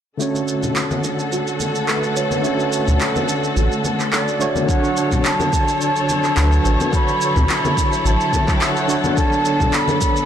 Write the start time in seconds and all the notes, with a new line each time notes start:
0.18 D3 A3 C#4 F#4 A4, shaker
0.22 C#5
0.35 shaker
0.48 shaker
0.63 low conga, shaker
0.76 clap, shaker
0.91 high conga, shaker
1.04 D4, shaker
1.19 shaker
1.32 F#4, shaker
1.47 shaker
1.60 high conga, shaker
1.75 shaker
1.87 D3 A3 F#4 A4 B4, clap, shaker
2.03 shaker
2.17 C#5, shaker
2.31 high conga, shaker
2.42 D3 A3 C#4 F#4, shaker
2.46 C#5
2.60 shaker
2.73 shaker
2.87 D2, low conga, shaker
3.01 clap, shaker
3.16 high conga, shaker
3.28 D4, shaker
3.44 shaker
3.56 A1 F#4, shaker
3.72 shaker
3.84 high conga, shaker
4.00 clap, shaker
4.13 A4 D5, clap, shaker
4.28 shaker
4.39 D3 A3 F#4 C#5, shaker
4.55 high conga, shaker
4.66 D3 F#3 D4 F#4 A4 C#5 F#5, kick, shaker
4.71 C#5
4.84 shaker
4.97 shaker
5.12 kick, low conga, shaker
5.25 A5, clap, shaker
5.40 high conga, shaker
5.53 kick, shaker
5.68 shaker
5.81 A5, shaker
5.96 shaker
6.09 high conga, shaker
6.24 clap, shaker
6.35 D2 D3 D4 F#4 B4, clap, shaker
6.52 shaker
6.65 A1, shaker
6.80 high conga, shaker
6.91 D3 D4 E4 F#4 B5, kick, shaker
6.95 C#5
7.08 shaker
7.21 shaker
7.36 D2, kick, low conga, shaker
7.49 clap, shaker
7.65 high conga, shaker
7.77 kick, shaker
7.93 shaker
8.05 A1 A5, shaker
8.21 shaker
8.33 kick, high conga, shaker
8.48 kick, clap, shaker
8.56 G5
8.61 F#5, clap, shaker
8.77 shaker
8.88 D3 D4 F#4 C#5, shaker
9.04 high conga, shaker
9.15 D3 B3 D4 A4 A5, kick, shaker
9.20 C#5
9.32 shaker
9.45 shaker
9.60 kick, low conga, shaker
9.73 B5, clap, shaker
9.88 high conga, shaker
10.01 kick, shaker
10.16 shaker